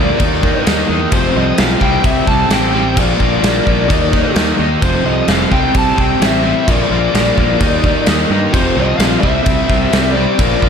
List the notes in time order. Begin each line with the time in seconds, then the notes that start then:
Already playing: D2 A#2 F3 A#3 D5
0.00 A#3
0.19 D#2 D#3 A#3 D#4, kick, crash
0.43 D#3 A#3 D#4, kick
0.66 D#2 D#3 A#3 D#4, snare, crash
0.89 E2 D#3 A#3 D#4
1.11 F1 F2 C3 F3 C5, kick, crash
1.35 C2 F2 C3 F3 D#5
1.58 B1 F2 C3 F3 F5, snare, crash
1.80 C2 C3 G3 C4 G5, kick
2.04 C2 C3 G3 C4 E5, kick, crash
2.26 C2 C3 G3 C4 A5, kick
2.50 A1 C3 G3 C4 G5, snare, crash
2.73 C3 G3 C4
2.96 A#1 A#2 F3 A#3 D5, kick, crash
3.19 A#1 A#2 F3 A#3, kick
3.41 A#1 A#2 F3 A#3, snare, crash
3.66 A#1 A#2 F3 A#3, kick
3.88 D#2 D#3 A#3 D#4, kick, crash
4.12 D#3 A#3 D#4, kick
4.35 D#2 D#3 A#3 D#4, snare, crash
4.58 D#2 D#3 A#3 D#4
4.80 F1 F2 C3 F3 C5, kick, crash
5.04 C2 F2 C3 F3 D#5
5.27 F1 F2 C3 F3 F5, snare, crash
5.51 C2 C3 G3 C4 G5, kick
5.74 C2 C3 G3 C4 A5, kick, crash
5.96 C2 C3 G3 C4, kick
6.01 G5
6.19 A1 C3 G3 C4, snare, crash
6.25 E5
6.43 C3 G3 C4
6.67 A#1 A#2 F3 A#3, kick, crash
6.71 D5
6.90 A#1 A#2 F3 A#3
7.14 A#1 A#2 F3 A#3, snare, crash
7.37 A#1 A#2 F3 A#3, kick
7.60 D#2 D#3 A#3 D#4, kick, crash
7.84 D#3 A#3 D#4, kick
8.06 D#2 D#3 A#3 D#4, snare, crash
8.30 G2 D#3 A#3 D#4
8.51 F1 F2 C5, kick, crash
8.55 F2 C3 F3
8.75 C2 F2 C3 F3 D#5
8.97 A#1 F2 F5, snare, crash
9.02 C3 F3
9.20 C2 C3 G3 C4 E5, kick
9.45 C2 C3 G3 C4, kick, crash
9.69 C2 C3 G3 C4, kick
9.93 C2 C3 G3 C4, snare, crash
10.11 D5
10.16 C3 G3 C4
10.38 A#1 A#2 F3 A#3, kick, crash
10.62 A#1 A#2 F3 A#3, kick